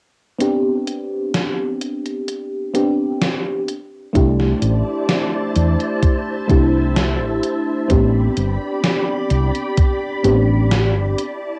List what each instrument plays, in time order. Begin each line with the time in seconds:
0.38 fm electric piano B3 C4 D4 G4, closed hi-hat
0.87 closed hi-hat
1.34 snare, closed hi-hat
1.81 closed hi-hat
2.06 closed hi-hat
2.28 closed hi-hat
2.74 fm electric piano B3 C4 D4 G4, closed hi-hat
3.22 snare, closed hi-hat
3.68 closed hi-hat
4.13 fretless electric bass C2, fm electric piano A3 D4 E4 G4, string machine E4 C5 D5 A5, kick, closed hi-hat
4.40 snare
4.62 fretless electric bass A1, closed hi-hat
5.09 snare, closed hi-hat
5.56 fretless electric bass E2, closed hi-hat
5.80 closed hi-hat
6.03 string machine E5, kick, closed hi-hat
6.47 fretless electric bass C2, fm electric piano A3 D4 E4 G4, kick, closed hi-hat
6.96 snare, closed hi-hat
7.21 fretless electric bass A1
7.43 closed hi-hat
7.88 fretless electric bass A1, fm electric piano B3 C4 D4 G4, string machine G4 D5 B5, kick, closed hi-hat
8.37 fretless electric bass G1, closed hi-hat
8.84 snare, closed hi-hat
9.30 fretless electric bass C2, closed hi-hat
9.55 closed hi-hat
9.77 kick, closed hi-hat
10.24 fretless electric bass A1, fm electric piano B3 C4 D4 G4, closed hi-hat
10.71 snare, closed hi-hat
10.96 fretless electric bass G1
11.18 string machine E4 D5 A5, closed hi-hat